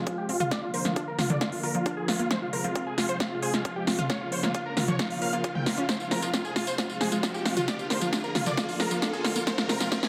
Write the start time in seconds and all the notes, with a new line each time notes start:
Already playing: riser
0.07 C3 F3 G#3 F4, kick, closed hi-hat
0.18 G4
0.29 C4 F4, open hi-hat
0.40 F4, closed hi-hat, mid tom
0.51 D3 F3 A#3 F4 D5, kick, snare, closed hi-hat
0.62 D3 F3 A#3 F4
0.74 A#4 C5, open hi-hat
0.85 D3 F3 A#3 F4, snare, closed hi-hat
0.96 D4 F4, kick, closed hi-hat
1.08 A#4
1.19 F4, snare, open hi-hat, mid tom
1.30 D3 F3 A#3 F4 D5, closed hi-hat, mid tom
1.41 F4 D5, kick, snare, closed hi-hat
1.52 D3 F3 A#3 F4, open hi-hat
1.63 F4 A#4, open hi-hat
1.75 D3 F3 A#3 F4, closed hi-hat
1.86 D3 F3 A#3 D4 F4, kick, closed hi-hat
1.97 G#4
2.08 F4, snare, open hi-hat
2.19 A#3 F4, closed hi-hat
2.30 C3 F3 G#3 F4 C5, kick, snare, closed hi-hat
2.42 C3 F3 G#3 F4
2.53 A#4 C5, open hi-hat
2.64 C3 F3 G#3 F4, closed hi-hat
2.75 C4 F4, kick, closed hi-hat
2.87 G#4
2.98 F4, snare, open hi-hat
3.09 C3 F3 G#3 F4 C5, closed hi-hat
3.20 F4 F5, kick, snare, closed hi-hat
3.31 C3 F3 G#3 F4
3.42 G#4 C5, open hi-hat
3.54 C3 F3 G#3 F4, snare, closed hi-hat
3.65 C3 F3 G#3 F4, kick, closed hi-hat
3.76 G4
3.87 C4 F4, snare, open hi-hat
3.98 F4, closed hi-hat, mid tom
4.10 C#3 F3 A#3 F4 C#5 F5, kick, snare, closed hi-hat
4.21 C#3 F3 A#3 F4
4.32 C5 C#5, open hi-hat
4.43 C#3 F3 A#3 F4, snare
4.54 F4, kick, closed hi-hat
4.66 A#4
4.77 F4 A#4, snare, open hi-hat, mid tom
4.88 C#3 F3 A#3 F4 C#5, closed hi-hat, mid tom
4.99 F4 F5, kick, snare, closed hi-hat
5.10 C#3 F3 A#3 F4, open hi-hat
5.22 A#4 F5, open hi-hat
5.33 C#3 F3 A#3 F4, closed hi-hat
5.44 C#3 F3 A#3 F4, kick, closed hi-hat
5.55 G5, mid tom
5.66 F4 A#4, snare, open hi-hat
5.78 C#4 F4, closed hi-hat
5.89 C3 F3 G#3 F4 C5, kick, snare, closed hi-hat, tambourine
6.00 C3 F3 G#3 F4, tambourine
6.11 A#4 C5, snare, open hi-hat
6.22 C3 F3 G#3 F4, closed hi-hat, tambourine
6.34 C4 F4, kick, snare, closed hi-hat, tambourine
6.45 G#4, tambourine
6.56 F4, snare, open hi-hat
6.67 C3 F3 G#3 F4 C5, closed hi-hat, tambourine
6.78 F4 F5, kick, snare, closed hi-hat, tambourine
6.89 C3 F3 G#3 F4, tambourine
7.01 G#4 C5, snare, open hi-hat
7.12 C3 F3 G#3 F4, closed hi-hat, tambourine
7.23 C3 F3 G#3 F4, kick, snare, closed hi-hat, tambourine
7.34 G4, tambourine
7.46 C4 F4, snare, open hi-hat
7.57 F4, closed hi-hat, mid tom, tambourine
7.68 D3 F3 A#3 F4 D5, kick, snare, closed hi-hat, tambourine
7.79 D3 F3 A#3 F4, tambourine
7.90 A#4 C5, snare, open hi-hat
8.01 D3 F3 A#3 F4, closed hi-hat, tambourine
8.13 D4 F4, kick, snare, closed hi-hat, tambourine
8.24 A#4, tambourine
8.35 F4, snare, open hi-hat, mid tom
8.46 D3 F3 A#3 F4 D5, closed hi-hat, mid tom, tambourine
8.57 F4 D5, kick, snare, closed hi-hat, tambourine
8.69 D3 F3 A#3 F4, open hi-hat, tambourine
8.80 F4 A#4, snare, open hi-hat
8.91 D3 F3 A#3 F4, closed hi-hat, tambourine
9.02 D3 F3 A#3 D4 F4, kick, snare, closed hi-hat, tambourine
9.13 G#4, tambourine
9.24 F4, snare, open hi-hat
9.36 A#3 F4, closed hi-hat, tambourine
9.47 C3 F3 G#3 F4 C5, kick, snare, closed hi-hat, tambourine
9.58 C3 F3 G#3 F4, snare, tambourine
9.69 A#4 C5, snare, open hi-hat
9.80 C3 F3 G#3 F4, snare, closed hi-hat, tambourine
9.92 C4 F4, kick, snare, closed hi-hat, tambourine
10.03 G#4, snare, tambourine